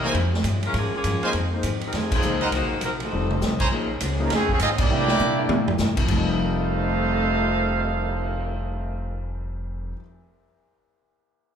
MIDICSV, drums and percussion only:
0, 0, Header, 1, 3, 480
1, 0, Start_track
1, 0, Tempo, 296883
1, 238, Time_signature, 4, 2, 24, 8
1, 18677, End_track
2, 0, Start_track
2, 0, Title_t, "Cymbal swell"
2, 10131, Note_on_c, 9, 59, 49
2, 13565, Note_off_c, 9, 59, 0
2, 18677, End_track
3, 0, Start_track
3, 0, Title_t, "Drums"
3, 236, Note_on_c, 9, 51, 59
3, 398, Note_off_c, 9, 51, 0
3, 550, Note_on_c, 9, 38, 47
3, 711, Note_off_c, 9, 38, 0
3, 712, Note_on_c, 9, 44, 56
3, 712, Note_on_c, 9, 51, 65
3, 874, Note_off_c, 9, 44, 0
3, 874, Note_off_c, 9, 51, 0
3, 1012, Note_on_c, 9, 51, 54
3, 1174, Note_off_c, 9, 51, 0
3, 1194, Note_on_c, 9, 51, 67
3, 1355, Note_off_c, 9, 51, 0
3, 1679, Note_on_c, 9, 44, 59
3, 1679, Note_on_c, 9, 51, 69
3, 1841, Note_off_c, 9, 44, 0
3, 1841, Note_off_c, 9, 51, 0
3, 1986, Note_on_c, 9, 51, 40
3, 2148, Note_off_c, 9, 51, 0
3, 2151, Note_on_c, 9, 51, 62
3, 2313, Note_off_c, 9, 51, 0
3, 2635, Note_on_c, 9, 44, 58
3, 2635, Note_on_c, 9, 51, 66
3, 2797, Note_off_c, 9, 44, 0
3, 2797, Note_off_c, 9, 51, 0
3, 2932, Note_on_c, 9, 51, 50
3, 3094, Note_off_c, 9, 51, 0
3, 3112, Note_on_c, 9, 51, 67
3, 3120, Note_on_c, 9, 38, 44
3, 3274, Note_off_c, 9, 51, 0
3, 3282, Note_off_c, 9, 38, 0
3, 3420, Note_on_c, 9, 36, 86
3, 3422, Note_on_c, 9, 49, 84
3, 3582, Note_off_c, 9, 36, 0
3, 3583, Note_off_c, 9, 49, 0
3, 3590, Note_on_c, 9, 44, 52
3, 3751, Note_off_c, 9, 44, 0
3, 3895, Note_on_c, 9, 51, 43
3, 4056, Note_off_c, 9, 51, 0
3, 4077, Note_on_c, 9, 51, 69
3, 4238, Note_off_c, 9, 51, 0
3, 4544, Note_on_c, 9, 44, 58
3, 4544, Note_on_c, 9, 51, 65
3, 4706, Note_off_c, 9, 44, 0
3, 4706, Note_off_c, 9, 51, 0
3, 4852, Note_on_c, 9, 51, 50
3, 5014, Note_off_c, 9, 51, 0
3, 5040, Note_on_c, 9, 47, 49
3, 5202, Note_off_c, 9, 47, 0
3, 5344, Note_on_c, 9, 47, 70
3, 5505, Note_off_c, 9, 47, 0
3, 5522, Note_on_c, 9, 44, 55
3, 5530, Note_on_c, 9, 38, 54
3, 5684, Note_off_c, 9, 44, 0
3, 5692, Note_off_c, 9, 38, 0
3, 5817, Note_on_c, 9, 49, 63
3, 5820, Note_on_c, 9, 36, 68
3, 5979, Note_off_c, 9, 49, 0
3, 5982, Note_off_c, 9, 36, 0
3, 6475, Note_on_c, 9, 44, 60
3, 6475, Note_on_c, 9, 51, 77
3, 6637, Note_off_c, 9, 44, 0
3, 6637, Note_off_c, 9, 51, 0
3, 6955, Note_on_c, 9, 51, 74
3, 6963, Note_on_c, 9, 38, 47
3, 7117, Note_off_c, 9, 51, 0
3, 7125, Note_off_c, 9, 38, 0
3, 7259, Note_on_c, 9, 36, 67
3, 7421, Note_off_c, 9, 36, 0
3, 7429, Note_on_c, 9, 44, 69
3, 7429, Note_on_c, 9, 51, 75
3, 7591, Note_off_c, 9, 44, 0
3, 7591, Note_off_c, 9, 51, 0
3, 7732, Note_on_c, 9, 49, 85
3, 7737, Note_on_c, 9, 36, 98
3, 7894, Note_off_c, 9, 49, 0
3, 7899, Note_off_c, 9, 36, 0
3, 8214, Note_on_c, 9, 38, 61
3, 8376, Note_off_c, 9, 38, 0
3, 8387, Note_on_c, 9, 44, 52
3, 8396, Note_on_c, 9, 48, 49
3, 8549, Note_off_c, 9, 44, 0
3, 8557, Note_off_c, 9, 48, 0
3, 8877, Note_on_c, 9, 48, 96
3, 9039, Note_off_c, 9, 48, 0
3, 9180, Note_on_c, 9, 43, 95
3, 9341, Note_off_c, 9, 43, 0
3, 9347, Note_on_c, 9, 44, 65
3, 9355, Note_on_c, 9, 38, 60
3, 9509, Note_off_c, 9, 44, 0
3, 9517, Note_off_c, 9, 38, 0
3, 9652, Note_on_c, 9, 49, 78
3, 9656, Note_on_c, 9, 36, 74
3, 9814, Note_off_c, 9, 49, 0
3, 9817, Note_off_c, 9, 36, 0
3, 9835, Note_on_c, 9, 36, 64
3, 9835, Note_on_c, 9, 49, 70
3, 9996, Note_off_c, 9, 36, 0
3, 9997, Note_off_c, 9, 49, 0
3, 18677, End_track
0, 0, End_of_file